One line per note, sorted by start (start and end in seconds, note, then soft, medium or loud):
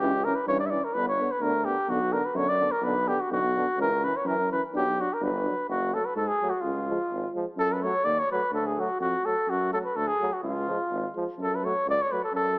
0.00 0.26 C#2 medium
0.00 0.10 E3 medium
0.00 0.12 C#4 medium
0.00 0.26 G4 medium
0.24 0.34 E3 medium
0.24 0.34 C#4 medium
0.24 0.37 A#4 medium
0.35 0.47 B4 medium
0.47 0.73 G2 medium
0.47 0.57 E3 medium
0.47 0.58 C#4 medium
0.47 0.59 C#5 loud
0.60 0.68 D5 medium
0.66 0.72 E5 medium
0.70 0.81 E3 medium
0.70 0.82 C#4 medium
0.70 0.86 D5 medium
0.84 0.95 A#4 medium
0.94 1.20 G1 medium
0.94 1.05 D3 medium
0.94 1.05 B3 medium
0.94 1.07 B4 loud
1.08 1.33 C#5 medium
1.18 1.28 D3 medium
1.18 1.28 B3 medium
1.31 1.43 B4 medium
1.40 1.67 D2 medium
1.40 1.52 D3 medium
1.40 1.50 B3 medium
1.40 1.66 A#4 loud
1.65 1.76 D3 medium
1.65 1.74 B3 soft
1.65 1.91 G4 medium
1.88 2.15 B1 medium
1.88 1.98 D3 medium
1.88 1.98 B3 medium
1.88 2.14 F#4 medium
2.12 2.22 D3 medium
2.12 2.22 B3 medium
2.12 2.27 A#4 medium
2.25 2.38 B4 medium
2.35 2.61 F#2 loud
2.35 2.46 D3 medium
2.35 2.45 B3 medium
2.35 2.50 C#5 medium
2.48 2.73 D5 loud
2.58 2.68 D3 medium
2.58 2.70 B3 medium
2.71 2.85 A#4 medium
2.81 3.08 B1 loud
2.81 2.94 D3 medium
2.81 2.92 B3 medium
2.81 3.09 B4 medium
3.07 3.17 D3 medium
3.07 3.16 B3 medium
3.07 3.22 G4 medium
3.20 3.32 F#4 medium
3.30 3.57 B1 loud
3.30 3.40 D3 medium
3.30 3.40 B3 medium
3.30 3.76 F#4 medium
3.55 3.65 D3 medium
3.55 3.64 B3 medium
3.77 4.04 C#2 loud
3.77 3.90 E3 medium
3.77 3.88 C#4 medium
3.77 4.06 A#4 loud
4.02 4.13 E3 medium
4.02 4.11 C#4 medium
4.02 4.18 B4 medium
4.17 4.28 C#5 medium
4.25 4.51 F#2 loud
4.25 4.36 E3 medium
4.25 4.36 C#4 medium
4.25 4.50 A#4 medium
4.51 4.61 E3 medium
4.51 4.60 C#4 medium
4.51 4.62 B4 medium
4.73 5.00 B1 medium
4.73 4.85 F#3 medium
4.73 4.82 D4 medium
4.73 5.02 G4 loud
4.98 5.07 F#3 medium
4.98 5.08 D4 medium
4.98 5.15 F#4 medium
5.13 5.25 A#4 medium
5.20 5.47 G1 loud
5.20 5.31 F#3 medium
5.20 5.31 D4 medium
5.20 5.69 B4 medium
5.44 5.55 F#3 medium
5.44 5.54 D4 soft
5.68 5.94 F#1 loud
5.68 5.95 F#4 medium
5.92 6.04 F#3 soft
5.92 6.02 A3 medium
5.92 6.07 A4 medium
6.05 6.16 B4 medium
6.16 6.29 G#2 medium
6.16 6.29 A4 medium
6.28 6.51 G#4 medium
6.42 6.51 F#3 medium
6.42 6.51 A3 medium
6.50 6.62 F#4 medium
6.61 6.89 C#2 medium
6.61 7.34 F4 medium
6.88 6.98 F3 medium
6.88 6.97 G#3 medium
7.11 7.24 G#1 medium
7.34 7.44 F3 medium
7.34 7.44 G#3 medium
7.57 7.83 F#2 medium
7.57 7.74 A4 loud
7.73 7.84 B4 medium
7.82 7.94 F#3 medium
7.82 7.92 A3 medium
7.82 8.06 C#5 loud
8.05 8.18 D#2 medium
8.05 8.21 D5 loud
8.19 8.30 C#5 loud
8.31 8.41 F#3 medium
8.31 8.41 A3 medium
8.31 8.53 B4 medium
8.51 8.78 D2 medium
8.51 8.68 A4 medium
8.66 8.81 G#4 medium
8.78 8.88 F#3 medium
8.78 8.88 A3 medium
8.78 9.00 F#4 medium
9.00 9.13 F2 medium
9.00 9.27 F#4 medium
9.24 9.35 F#3 soft
9.24 9.34 A3 soft
9.24 9.51 A4 medium
9.48 9.75 F#2 medium
9.48 9.73 F#4 medium
9.72 9.83 F#3 medium
9.72 9.82 A3 soft
9.72 9.79 A4 medium
9.85 9.98 B4 medium
9.96 10.09 D2 medium
9.96 10.09 A4 loud
10.07 10.35 G#4 medium
10.21 10.30 F#3 medium
10.21 10.30 A3 soft
10.33 10.42 F#4 medium
10.43 10.69 C#2 medium
10.43 11.11 F4 medium
10.67 10.77 F3 medium
10.67 10.77 G#3 medium
10.91 11.04 G#1 medium
11.15 11.25 F3 medium
11.15 11.24 G#3 medium
11.38 11.64 F#2 medium
11.42 11.57 A4 medium
11.55 11.66 B4 medium
11.64 11.73 F#3 medium
11.64 11.73 A3 medium
11.64 11.87 C#5 loud
11.87 12.00 C#2 medium
11.87 12.03 D5 loud
12.02 12.13 C#5 loud
12.10 12.21 F#3 medium
12.10 12.19 A3 medium
12.10 12.23 B4 medium
12.24 12.34 A4 medium
12.32 12.59 F#2 medium
12.32 12.59 A4 loud